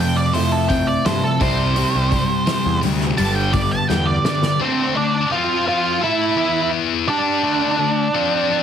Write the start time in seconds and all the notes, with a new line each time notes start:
Already playing: C4
0.00 F2 C3 F3 A3 G5
0.16 D5
0.33 F2 C3 F3 A3 E4 C5, open hi-hat
0.52 A4
0.69 F2 C3 F3 A3 C4 G5, kick, open hi-hat
0.87 D5
1.04 F2 G2 C3 F3 A3 C5, snare, open hi-hat
1.24 A4
1.40 C2 C3 G3 C4 C5, kick, open hi-hat
1.76 C3 G3 C4, open hi-hat
1.95 C2
2.11 C3 G3, kick, open hi-hat
2.46 C3 G3, snare, open hi-hat
2.66 E2
2.81 D2 C3 G3, open hi-hat
3.00 snare
3.17 G1 G2 D3 G3 A5, open hi-hat
3.36 G5
3.53 G2 D3 B3 D5, kick, open hi-hat
3.71 A5
3.89 E2 G2 D3 G3 G5, snare
4.07 D5
4.25 G2 D3 D4 D5, snare
4.43 snare
4.60 D3 A3 C4 D4 C5
4.95 D3 A3 D4 D5
5.30 F3 C4 F4 F5
5.68 F4 F5
6.01 A3 E4 A4 E5
6.37 E3 B3 E4
7.07 G3 D4 G4 D5
7.43 D3 A3 D4
7.78 D3 A3
8.15 F3 C4 F4